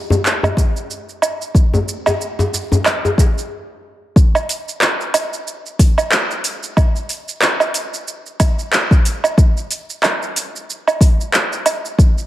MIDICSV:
0, 0, Header, 1, 3, 480
1, 0, Start_track
1, 0, Tempo, 652174
1, 1144, Time_signature, 4, 2, 24, 8
1, 9029, End_track
2, 0, Start_track
2, 0, Title_t, "Djembe"
2, 76, Note_on_c, 9, 63, 59
2, 76, Note_on_c, 9, 64, 87
2, 149, Note_off_c, 9, 63, 0
2, 150, Note_off_c, 9, 64, 0
2, 318, Note_on_c, 9, 64, 82
2, 392, Note_off_c, 9, 64, 0
2, 419, Note_on_c, 9, 62, 52
2, 493, Note_off_c, 9, 62, 0
2, 1278, Note_on_c, 9, 64, 92
2, 1351, Note_off_c, 9, 64, 0
2, 1522, Note_on_c, 9, 62, 58
2, 1528, Note_on_c, 9, 63, 62
2, 1596, Note_off_c, 9, 62, 0
2, 1601, Note_off_c, 9, 63, 0
2, 1759, Note_on_c, 9, 63, 81
2, 1833, Note_off_c, 9, 63, 0
2, 1869, Note_on_c, 9, 62, 33
2, 1943, Note_off_c, 9, 62, 0
2, 1999, Note_on_c, 9, 63, 67
2, 2002, Note_on_c, 9, 64, 80
2, 2073, Note_off_c, 9, 63, 0
2, 2076, Note_off_c, 9, 64, 0
2, 2244, Note_on_c, 9, 63, 69
2, 2317, Note_off_c, 9, 63, 0
2, 2356, Note_on_c, 9, 62, 52
2, 2429, Note_off_c, 9, 62, 0
2, 9029, End_track
3, 0, Start_track
3, 0, Title_t, "Drums"
3, 90, Note_on_c, 9, 82, 32
3, 163, Note_off_c, 9, 82, 0
3, 189, Note_on_c, 9, 39, 71
3, 194, Note_on_c, 9, 82, 41
3, 262, Note_off_c, 9, 39, 0
3, 267, Note_off_c, 9, 82, 0
3, 324, Note_on_c, 9, 77, 82
3, 329, Note_on_c, 9, 82, 20
3, 397, Note_off_c, 9, 77, 0
3, 402, Note_off_c, 9, 82, 0
3, 419, Note_on_c, 9, 36, 92
3, 429, Note_on_c, 9, 82, 70
3, 493, Note_off_c, 9, 36, 0
3, 503, Note_off_c, 9, 82, 0
3, 563, Note_on_c, 9, 82, 30
3, 636, Note_off_c, 9, 82, 0
3, 667, Note_on_c, 9, 82, 42
3, 740, Note_off_c, 9, 82, 0
3, 803, Note_on_c, 9, 82, 21
3, 876, Note_off_c, 9, 82, 0
3, 899, Note_on_c, 9, 77, 72
3, 904, Note_on_c, 9, 82, 71
3, 973, Note_off_c, 9, 77, 0
3, 978, Note_off_c, 9, 82, 0
3, 1042, Note_on_c, 9, 82, 29
3, 1116, Note_off_c, 9, 82, 0
3, 1138, Note_on_c, 9, 36, 102
3, 1145, Note_on_c, 9, 82, 41
3, 1212, Note_off_c, 9, 36, 0
3, 1219, Note_off_c, 9, 82, 0
3, 1283, Note_on_c, 9, 82, 19
3, 1356, Note_off_c, 9, 82, 0
3, 1386, Note_on_c, 9, 82, 66
3, 1460, Note_off_c, 9, 82, 0
3, 1517, Note_on_c, 9, 77, 78
3, 1522, Note_on_c, 9, 82, 30
3, 1591, Note_off_c, 9, 77, 0
3, 1596, Note_off_c, 9, 82, 0
3, 1628, Note_on_c, 9, 82, 45
3, 1702, Note_off_c, 9, 82, 0
3, 1765, Note_on_c, 9, 82, 21
3, 1839, Note_off_c, 9, 82, 0
3, 1870, Note_on_c, 9, 82, 74
3, 1943, Note_off_c, 9, 82, 0
3, 2006, Note_on_c, 9, 82, 31
3, 2080, Note_off_c, 9, 82, 0
3, 2103, Note_on_c, 9, 39, 76
3, 2103, Note_on_c, 9, 77, 75
3, 2109, Note_on_c, 9, 82, 39
3, 2177, Note_off_c, 9, 39, 0
3, 2177, Note_off_c, 9, 77, 0
3, 2182, Note_off_c, 9, 82, 0
3, 2247, Note_on_c, 9, 82, 21
3, 2321, Note_off_c, 9, 82, 0
3, 2340, Note_on_c, 9, 36, 90
3, 2349, Note_on_c, 9, 82, 72
3, 2414, Note_off_c, 9, 36, 0
3, 2423, Note_off_c, 9, 82, 0
3, 2489, Note_on_c, 9, 82, 31
3, 2563, Note_off_c, 9, 82, 0
3, 3062, Note_on_c, 9, 36, 115
3, 3070, Note_on_c, 9, 82, 44
3, 3136, Note_off_c, 9, 36, 0
3, 3143, Note_off_c, 9, 82, 0
3, 3202, Note_on_c, 9, 77, 81
3, 3207, Note_on_c, 9, 82, 22
3, 3276, Note_off_c, 9, 77, 0
3, 3281, Note_off_c, 9, 82, 0
3, 3306, Note_on_c, 9, 46, 88
3, 3312, Note_on_c, 9, 82, 74
3, 3380, Note_off_c, 9, 46, 0
3, 3385, Note_off_c, 9, 82, 0
3, 3449, Note_on_c, 9, 82, 34
3, 3522, Note_off_c, 9, 82, 0
3, 3544, Note_on_c, 9, 39, 105
3, 3549, Note_on_c, 9, 82, 47
3, 3617, Note_off_c, 9, 39, 0
3, 3622, Note_off_c, 9, 82, 0
3, 3685, Note_on_c, 9, 82, 22
3, 3759, Note_off_c, 9, 82, 0
3, 3783, Note_on_c, 9, 46, 95
3, 3783, Note_on_c, 9, 77, 81
3, 3788, Note_on_c, 9, 82, 79
3, 3857, Note_off_c, 9, 46, 0
3, 3857, Note_off_c, 9, 77, 0
3, 3862, Note_off_c, 9, 82, 0
3, 3925, Note_on_c, 9, 82, 34
3, 3999, Note_off_c, 9, 82, 0
3, 4030, Note_on_c, 9, 82, 45
3, 4104, Note_off_c, 9, 82, 0
3, 4166, Note_on_c, 9, 82, 22
3, 4240, Note_off_c, 9, 82, 0
3, 4264, Note_on_c, 9, 36, 104
3, 4265, Note_on_c, 9, 46, 95
3, 4270, Note_on_c, 9, 82, 80
3, 4337, Note_off_c, 9, 36, 0
3, 4339, Note_off_c, 9, 46, 0
3, 4344, Note_off_c, 9, 82, 0
3, 4400, Note_on_c, 9, 77, 76
3, 4405, Note_on_c, 9, 82, 32
3, 4473, Note_off_c, 9, 77, 0
3, 4479, Note_off_c, 9, 82, 0
3, 4503, Note_on_c, 9, 39, 112
3, 4509, Note_on_c, 9, 82, 45
3, 4577, Note_off_c, 9, 39, 0
3, 4582, Note_off_c, 9, 82, 0
3, 4643, Note_on_c, 9, 82, 22
3, 4717, Note_off_c, 9, 82, 0
3, 4741, Note_on_c, 9, 46, 90
3, 4746, Note_on_c, 9, 82, 74
3, 4814, Note_off_c, 9, 46, 0
3, 4819, Note_off_c, 9, 82, 0
3, 4881, Note_on_c, 9, 82, 34
3, 4954, Note_off_c, 9, 82, 0
3, 4981, Note_on_c, 9, 77, 78
3, 4983, Note_on_c, 9, 36, 114
3, 4987, Note_on_c, 9, 82, 47
3, 5055, Note_off_c, 9, 77, 0
3, 5057, Note_off_c, 9, 36, 0
3, 5060, Note_off_c, 9, 82, 0
3, 5122, Note_on_c, 9, 82, 23
3, 5195, Note_off_c, 9, 82, 0
3, 5220, Note_on_c, 9, 46, 81
3, 5225, Note_on_c, 9, 82, 77
3, 5293, Note_off_c, 9, 46, 0
3, 5299, Note_off_c, 9, 82, 0
3, 5361, Note_on_c, 9, 82, 35
3, 5435, Note_off_c, 9, 82, 0
3, 5460, Note_on_c, 9, 39, 110
3, 5465, Note_on_c, 9, 82, 45
3, 5534, Note_off_c, 9, 39, 0
3, 5539, Note_off_c, 9, 82, 0
3, 5595, Note_on_c, 9, 77, 77
3, 5600, Note_on_c, 9, 82, 22
3, 5668, Note_off_c, 9, 77, 0
3, 5673, Note_off_c, 9, 82, 0
3, 5698, Note_on_c, 9, 46, 92
3, 5703, Note_on_c, 9, 82, 84
3, 5772, Note_off_c, 9, 46, 0
3, 5777, Note_off_c, 9, 82, 0
3, 5842, Note_on_c, 9, 82, 36
3, 5916, Note_off_c, 9, 82, 0
3, 5944, Note_on_c, 9, 82, 49
3, 6018, Note_off_c, 9, 82, 0
3, 6081, Note_on_c, 9, 82, 22
3, 6154, Note_off_c, 9, 82, 0
3, 6181, Note_on_c, 9, 46, 91
3, 6181, Note_on_c, 9, 77, 76
3, 6182, Note_on_c, 9, 36, 115
3, 6186, Note_on_c, 9, 82, 84
3, 6255, Note_off_c, 9, 46, 0
3, 6255, Note_off_c, 9, 77, 0
3, 6256, Note_off_c, 9, 36, 0
3, 6260, Note_off_c, 9, 82, 0
3, 6321, Note_on_c, 9, 82, 33
3, 6395, Note_off_c, 9, 82, 0
3, 6424, Note_on_c, 9, 39, 110
3, 6430, Note_on_c, 9, 82, 52
3, 6498, Note_off_c, 9, 39, 0
3, 6503, Note_off_c, 9, 82, 0
3, 6558, Note_on_c, 9, 36, 110
3, 6566, Note_on_c, 9, 82, 23
3, 6631, Note_off_c, 9, 36, 0
3, 6640, Note_off_c, 9, 82, 0
3, 6663, Note_on_c, 9, 46, 88
3, 6668, Note_on_c, 9, 82, 76
3, 6737, Note_off_c, 9, 46, 0
3, 6742, Note_off_c, 9, 82, 0
3, 6799, Note_on_c, 9, 77, 78
3, 6805, Note_on_c, 9, 82, 37
3, 6873, Note_off_c, 9, 77, 0
3, 6878, Note_off_c, 9, 82, 0
3, 6901, Note_on_c, 9, 36, 122
3, 6906, Note_on_c, 9, 82, 47
3, 6975, Note_off_c, 9, 36, 0
3, 6979, Note_off_c, 9, 82, 0
3, 7045, Note_on_c, 9, 82, 24
3, 7118, Note_off_c, 9, 82, 0
3, 7143, Note_on_c, 9, 46, 87
3, 7149, Note_on_c, 9, 82, 83
3, 7217, Note_off_c, 9, 46, 0
3, 7222, Note_off_c, 9, 82, 0
3, 7284, Note_on_c, 9, 82, 35
3, 7358, Note_off_c, 9, 82, 0
3, 7384, Note_on_c, 9, 39, 99
3, 7384, Note_on_c, 9, 77, 77
3, 7389, Note_on_c, 9, 82, 46
3, 7458, Note_off_c, 9, 39, 0
3, 7458, Note_off_c, 9, 77, 0
3, 7463, Note_off_c, 9, 82, 0
3, 7525, Note_on_c, 9, 82, 24
3, 7599, Note_off_c, 9, 82, 0
3, 7627, Note_on_c, 9, 46, 92
3, 7632, Note_on_c, 9, 82, 87
3, 7700, Note_off_c, 9, 46, 0
3, 7706, Note_off_c, 9, 82, 0
3, 7771, Note_on_c, 9, 82, 36
3, 7844, Note_off_c, 9, 82, 0
3, 7875, Note_on_c, 9, 82, 49
3, 7949, Note_off_c, 9, 82, 0
3, 8004, Note_on_c, 9, 77, 76
3, 8009, Note_on_c, 9, 82, 24
3, 8078, Note_off_c, 9, 77, 0
3, 8083, Note_off_c, 9, 82, 0
3, 8101, Note_on_c, 9, 36, 113
3, 8106, Note_on_c, 9, 46, 91
3, 8111, Note_on_c, 9, 82, 79
3, 8174, Note_off_c, 9, 36, 0
3, 8179, Note_off_c, 9, 46, 0
3, 8184, Note_off_c, 9, 82, 0
3, 8248, Note_on_c, 9, 82, 36
3, 8322, Note_off_c, 9, 82, 0
3, 8344, Note_on_c, 9, 39, 106
3, 8350, Note_on_c, 9, 82, 52
3, 8418, Note_off_c, 9, 39, 0
3, 8423, Note_off_c, 9, 82, 0
3, 8483, Note_on_c, 9, 82, 25
3, 8557, Note_off_c, 9, 82, 0
3, 8580, Note_on_c, 9, 46, 83
3, 8580, Note_on_c, 9, 77, 72
3, 8585, Note_on_c, 9, 82, 77
3, 8654, Note_off_c, 9, 46, 0
3, 8654, Note_off_c, 9, 77, 0
3, 8659, Note_off_c, 9, 82, 0
3, 8724, Note_on_c, 9, 82, 34
3, 8798, Note_off_c, 9, 82, 0
3, 8821, Note_on_c, 9, 36, 120
3, 8828, Note_on_c, 9, 82, 47
3, 8895, Note_off_c, 9, 36, 0
3, 8902, Note_off_c, 9, 82, 0
3, 8964, Note_on_c, 9, 82, 24
3, 9029, Note_off_c, 9, 82, 0
3, 9029, End_track
0, 0, End_of_file